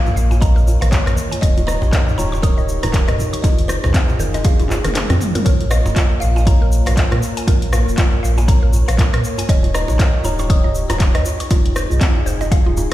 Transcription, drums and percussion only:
0.06 djembe tone, low conga, shaker
0.16 muted conga, high conga, shaker
0.31 djembe slap, djembe tone, shaker
0.42 kick, closed hi-hat, shaker
0.57 muted conga, shaker
0.67 djembe tone, shaker
0.82 cross-stick, closed hi-hat, high conga, shaker
0.92 kick, clap, closed hi-hat, djembe tone, shaker
1.06 cross-stick, closed hi-hat, low conga, shaker
1.16 high conga, shaker
1.32 closed hi-hat, muted conga, djembe tone, shaker
1.42 kick, closed hi-hat, shaker
1.57 closed hi-hat, high conga, djembe tone, shaker
1.67 cross-stick, muted conga, shaker
1.82 djembe slap, low conga, shaker
1.93 kick, clap, closed hi-hat, djembe tone, shaker
2.07 low conga, shaker
2.18 muted conga, djembe tone, high conga, shaker
2.33 djembe slap, shaker
2.43 kick, closed hi-hat, shaker
2.58 muted conga, djembe tone, shaker
2.69 shaker
2.83 cross-stick, closed hi-hat, djembe slap, djembe tone, high conga, shaker
2.94 kick, clap, closed hi-hat, shaker
3.08 cross-stick, closed hi-hat, low conga, shaker
3.18 high conga, djembe tone, low conga, shaker
3.33 closed hi-hat, muted conga, shaker
3.44 kick, closed hi-hat, djembe slap, djembe tone, shaker
3.58 closed hi-hat, high conga, shaker
3.69 cross-stick, muted conga, shaker
3.84 cross-stick, djembe slap, djembe tone, low conga, shaker
3.94 kick, clap, closed hi-hat, shaker
4.09 djembe tone, low conga, shaker
4.20 muted conga, high conga, shaker
4.34 closed hi-hat, djembe slap, shaker
4.44 kick, closed hi-hat, high tom, djembe tone, shaker
4.60 closed hi-hat, high tom, muted conga, shaker
4.70 clap, djembe tone, shaker
4.85 cross-stick, closed hi-hat, mid tom, high conga, shaker
4.95 clap, closed hi-hat, mid tom, muted conga, high conga, shaker
5.10 cross-stick, closed hi-hat, djembe tone, low conga, shaker
5.21 mid tom, high conga, shaker
5.35 closed hi-hat, mid tom, muted conga, djembe tone, shaker
5.46 kick, closed hi-hat, shaker
5.60 closed hi-hat, djembe tone
5.71 cross-stick, shaker
5.86 djembe slap, djembe tone, shaker
5.96 kick, clap, closed hi-hat, shaker
6.21 djembe tone, shaker
6.36 djembe slap, shaker
6.47 kick, closed hi-hat, djembe tone, shaker
6.72 shaker
6.86 cross-stick, closed hi-hat, djembe slap, djembe tone, shaker
6.97 kick, clap, closed hi-hat, shaker
7.11 cross-stick, closed hi-hat, djembe tone
7.23 shaker
7.37 closed hi-hat, shaker
7.47 kick, closed hi-hat, djembe slap, djembe tone, shaker
7.62 closed hi-hat
7.73 cross-stick, djembe tone, shaker
7.89 shaker
7.98 kick, clap, closed hi-hat, shaker
8.12 djembe tone
8.24 shaker
8.38 djembe slap, djembe tone, shaker
8.48 kick, closed hi-hat, shaker
8.73 djembe tone, shaker
8.88 cross-stick, closed hi-hat, shaker
8.98 kick, clap, closed hi-hat, djembe tone, shaker
9.14 cross-stick, closed hi-hat
9.24 shaker
9.38 closed hi-hat, djembe tone, shaker
9.49 kick, closed hi-hat, shaker
9.63 closed hi-hat, djembe tone
9.74 cross-stick, shaker
9.88 djembe slap, shaker
9.99 kick, clap, closed hi-hat, djembe tone, shaker
10.24 djembe tone, shaker
10.39 djembe slap, shaker
10.50 kick, closed hi-hat, shaker
10.64 djembe tone
10.75 shaker
10.90 cross-stick, closed hi-hat, djembe slap, djembe tone, shaker
11.00 kick, clap, closed hi-hat, shaker
11.15 cross-stick, closed hi-hat
11.25 djembe tone, shaker
11.40 closed hi-hat, shaker
11.50 kick, closed hi-hat, djembe slap, djembe tone, shaker
11.66 closed hi-hat
11.76 cross-stick, shaker
11.90 djembe tone, shaker
12.01 kick, clap, closed hi-hat, shaker
12.16 djembe tone
12.27 shaker
12.41 djembe slap, shaker
12.51 kick, closed hi-hat, djembe tone, shaker
12.77 djembe tone, shaker

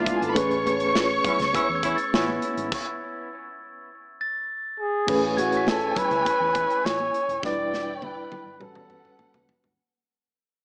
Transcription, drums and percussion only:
0.06 kick, closed hi-hat
0.22 closed hi-hat
0.36 kick, closed hi-hat
0.51 closed hi-hat
0.66 closed hi-hat, muted conga
0.80 closed hi-hat
0.95 snare, high conga
1.24 kick, closed hi-hat, muted conga, low conga
1.39 snare, closed hi-hat
1.53 kick, closed hi-hat, muted conga
1.83 kick, closed hi-hat
1.98 closed hi-hat
2.13 snare, high conga
2.29 high conga
2.42 closed hi-hat
2.58 closed hi-hat
2.72 kick, crash
5.08 kick, crash
5.38 closed hi-hat, muted conga
5.52 closed hi-hat
5.67 snare, high conga
5.81 closed hi-hat
5.96 kick, closed hi-hat, muted conga, low conga
6.11 closed hi-hat
6.25 kick, closed hi-hat, muted conga
6.55 kick, closed hi-hat, muted conga
6.70 closed hi-hat
6.85 snare, high conga
7.00 high conga
7.14 closed hi-hat
7.29 closed hi-hat
7.43 kick, snare
7.73 snare, muted conga
8.02 high tom, high conga
8.32 high tom, muted conga, low conga
8.61 mid tom, muted conga, low conga
8.75 mid tom
8.90 mid tom, muted conga
9.05 mid tom
9.19 mid tom, high conga
9.34 floor tom, high conga
9.49 floor tom
9.64 floor tom

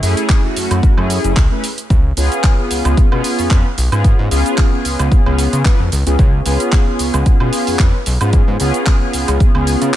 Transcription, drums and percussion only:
0.03 open hi-hat, cabasa
0.17 closed hi-hat, cabasa
0.29 kick, clap, closed hi-hat, cabasa
0.56 open hi-hat, cabasa
0.71 closed hi-hat, cabasa, high woodblock
0.83 kick, closed hi-hat, cabasa
0.98 high woodblock
1.10 open hi-hat, cabasa
1.24 closed hi-hat, cabasa
1.37 kick, clap, closed hi-hat, cabasa
1.64 open hi-hat, cabasa
1.78 closed hi-hat, cabasa
1.90 kick, closed hi-hat, cabasa
2.17 open hi-hat, cabasa
2.32 closed hi-hat, cabasa
2.44 kick, clap, closed hi-hat, cabasa
2.71 open hi-hat, cabasa
2.85 closed hi-hat, cabasa, high woodblock
2.97 kick, closed hi-hat, cabasa
3.12 high woodblock
3.24 open hi-hat, cabasa
3.39 open hi-hat, cabasa
3.51 kick, clap, closed hi-hat, cabasa
3.78 open hi-hat, cabasa
3.92 closed hi-hat, cabasa, high woodblock
4.04 kick, closed hi-hat, cabasa
4.31 open hi-hat, cabasa
4.46 closed hi-hat, cabasa
4.58 kick, clap, closed hi-hat, cabasa
4.85 open hi-hat, cabasa
4.99 closed hi-hat, cabasa, high woodblock
5.12 kick, closed hi-hat, cabasa
5.26 high woodblock
5.38 open hi-hat, cabasa
5.53 closed hi-hat, cabasa
5.65 kick, clap, closed hi-hat, cabasa
5.92 open hi-hat, cabasa
6.07 closed hi-hat, cabasa
6.19 kick, closed hi-hat, cabasa
6.46 open hi-hat, cabasa
6.60 closed hi-hat, cabasa
6.72 kick, clap, closed hi-hat, cabasa
6.99 open hi-hat, cabasa
7.14 closed hi-hat, cabasa, high woodblock
7.26 kick, closed hi-hat, cabasa
7.40 high woodblock
7.53 open hi-hat, cabasa
7.67 open hi-hat, cabasa
7.79 kick, clap, closed hi-hat, cabasa
8.06 open hi-hat, cabasa
8.21 closed hi-hat, cabasa, high woodblock
8.33 kick, closed hi-hat, cabasa
8.60 open hi-hat, cabasa
8.74 closed hi-hat, cabasa
8.86 kick, clap, closed hi-hat, cabasa
9.13 open hi-hat, cabasa
9.28 closed hi-hat, cabasa, high woodblock
9.40 kick, closed hi-hat, cabasa
9.55 high woodblock
9.67 open hi-hat, cabasa
9.82 closed hi-hat, cabasa

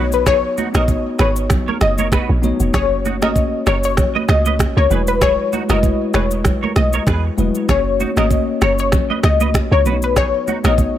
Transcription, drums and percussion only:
0.12 shaker
0.26 finger snap, kick, cross-stick, low conga, shaker
0.58 high conga, shaker
0.74 finger snap, cross-stick, high conga, shaker
0.88 kick, shaker
1.19 finger snap, cross-stick, shaker
1.36 shaker
1.50 finger snap, kick, cross-stick, low conga, shaker
1.68 high conga
1.81 finger snap, cross-stick, shaker
1.98 high conga, shaker
2.12 finger snap, kick, cross-stick, shaker
2.43 high conga, low conga, shaker
2.60 shaker
2.74 finger snap, kick, cross-stick, low conga, shaker
3.05 high conga, shaker
3.22 finger snap, cross-stick, high conga, shaker
3.36 kick, shaker
3.66 finger snap, cross-stick, shaker
3.84 shaker
3.97 finger snap, kick, cross-stick, low conga, shaker
4.16 high conga
4.29 finger snap, cross-stick, shaker
4.46 high conga, shaker
4.59 finger snap, kick, cross-stick, shaker
4.91 high conga, low conga, shaker
5.07 shaker
5.21 finger snap, kick, cross-stick, low conga, shaker
5.53 high conga, shaker
5.69 finger snap, cross-stick, high conga, shaker
5.83 kick, shaker
6.14 finger snap, cross-stick, high conga, shaker
6.31 shaker
6.44 finger snap, kick, cross-stick, low conga, shaker
6.63 high conga
6.76 finger snap, cross-stick, high conga, shaker
6.93 high conga, shaker
7.07 finger snap, kick, cross-stick, shaker
7.38 high conga, low conga, shaker
7.55 shaker
7.69 finger snap, kick, cross-stick, low conga, shaker
8.00 high conga, shaker
8.17 finger snap, cross-stick, high conga, shaker
8.31 kick, shaker
8.61 finger snap, cross-stick, shaker
8.78 shaker
8.92 finger snap, kick, cross-stick, low conga, shaker
9.10 high conga
9.23 finger snap, cross-stick, shaker
9.40 high conga, shaker
9.54 finger snap, kick, cross-stick, shaker
9.86 high conga, low conga, shaker
10.02 shaker
10.16 finger snap, kick, cross-stick, low conga, shaker
10.48 high conga, shaker
10.64 finger snap, cross-stick, high conga, shaker
10.78 kick, shaker

